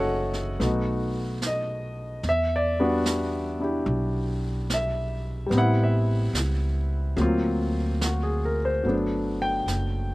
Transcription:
Already playing: upright bass F#1, grand piano A3 C#4 D#4 E4 F#4 A4 C#5 D#5 E5 F#5
0.33 snare
0.59 upright bass B1, grand piano A3 B3 D#4 F#4, brush sweep, snare
1.42 snare, hi-hat pedal
1.47 grand piano D#5
2.23 upright bass E2, brush sweep, snare
2.29 grand piano E5
2.56 grand piano D5
2.80 grand piano G3 B3 D4 F#4
3.06 snare, hi-hat pedal
3.60 grand piano D4 E4 G4
3.86 upright bass B1, brush sweep
4.70 snare, hi-hat pedal
4.74 grand piano E5
5.46 grand piano G3 B3
5.51 upright bass A1, grand piano C4, brush sweep, snare
5.57 grand piano E4 F#5
5.83 grand piano E5
6.33 upright bass C#2, snare, hi-hat pedal
7.17 upright bass D2, grand piano F#3 A#3 C4, brush sweep, snare
7.22 grand piano F4
8.01 grand piano F#4, snare, hi-hat pedal
8.23 grand piano G#4
8.45 grand piano A#4
8.65 grand piano C5
8.83 upright bass G1, grand piano F#3 A3 B3, brush sweep
8.88 grand piano D4
9.42 grand piano G5
9.66 upright bass F#1, snare, hi-hat pedal

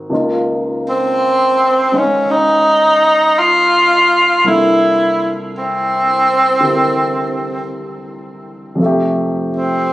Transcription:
Already playing: grand piano D#3 C4 F#4
0.09 grand piano C#2 C#3 A#3 D#4
0.14 grand piano F4
0.89 tenor saxophone C4
1.92 grand piano C#3 G#3 C#4 D#4
1.97 tenor saxophone C#4
2.31 tenor saxophone D#4
3.39 tenor saxophone F4
4.44 grand piano C2 C3 A#3 D4 E4, tenor saxophone E4
4.48 grand piano A4
5.58 tenor saxophone C4
6.60 grand piano D3 C4 E4 G4 A#4
8.75 grand piano F2 C3
8.81 grand piano A3 E5
8.86 grand piano G4
9.56 tenor saxophone C4

